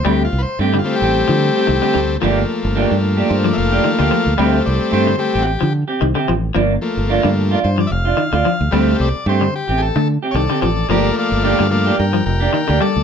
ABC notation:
X:1
M:4/4
L:1/16
Q:"Swing 16ths" 1/4=111
K:Gm
V:1 name="Transistor combo organ"
(3G2 F2 [=Bc]2 (3G2 F2 G2- G6- G z | z8 c d [=ef]6- | [=ef]2 d2 c2 G2 [^FG]2 z6 | z8 c d [=ef]6- |
[=ef]2 d2 c2 G2 [_A=A]2 z2 [A^cd]2 [Ad]2 | [Bd]2 [df]2 [df]2 [df]2 [Bg]2 [Bg]2 [Bg]2 [Ad]2 |]
V:2 name="Transistor combo organ"
z6 [G,A,C]8- [G,A,C]2 | [F,A,B,]16 | [G,A,C]6 [G,A,C]2 z8 | z2 [F,A,B,]6 z8 |
[G,A,C]2 z12 z2 | [F,A,B,]6 [F,A,B,]2 z8 |]
V:3 name="Clean electric guitar"
[A,CG] z3 [A,CG] z2 [CG] z3 [CG] z [CG] z2 | [F,B,DG] z3 [F,B,DG] z2 [B,DG] z3 [B,DG] z [B,G] z2 | [A,CG] z3 [A,CG] z2 [CG] z3 [CG] z [CG] z2 | [B,D] z3 [B,DF] z2 [DF] z3 [DF] z [DF] z2 |
[A,C] z3 [A,CG] z2 [CG] z3 [CG] z [CG] z2 | [F,DG] z3 [F,B,DG] z2 [B,DG] z3 [B,DG] z [B,DG] z2 |]
V:4 name="Clean electric guitar" clef=bass
G,2 z3 D,2 z2 F,2 z E, D, D,2 | F,2 z6 z F,2 z E, D, F,2 | G,2 z3 D,2 z2 F,2 z E, D, F,2 | F,2 z3 D,2 z2 F,2 z E, D, F,2 |
G,2 z3 D,2 z2 A,2 z E, D, F,2 | F,2 z3 D,2 z2 F,2 z E, D, G,2 |]
V:5 name="Fingered electric bass" clef=bass
D,,2 C,, z G,,2 z A,,,2 D,2 z C,, z D,,2 | G,,,2 z G,,,2 G,,3 G,,2 F,,,2 z D,, z D,, | D,,2 C,, z G,,2 z A,,,2 D,2 z C,, z A,,,2 | G,,,2 z G,,,2 G,,3 G,,2 F,,,2 z D,, z D,, |
D,,2 C,, z G,,2 z A,,,2 D,2 z C,, z A,,,2 | G,,,2 z G,,,2 G,,3 G,,2 F,,,2 z D,, z D,, |]